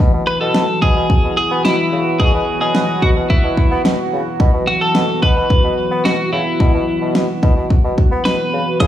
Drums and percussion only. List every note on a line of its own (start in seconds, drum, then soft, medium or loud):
0.00 kick loud
0.54 snare loud
0.82 kick loud
1.10 kick medium
1.65 snare loud
2.20 kick loud
2.75 snare loud
3.02 kick loud
3.30 kick medium
3.57 kick medium
3.85 snare loud
4.40 kick loud
4.95 snare loud
5.23 kick loud
5.50 kick medium
6.05 snare loud
6.60 kick loud
7.15 snare loud
7.43 kick medium
7.70 kick medium
7.98 kick medium
8.25 snare loud
8.80 kick loud
8.80 closed hi-hat medium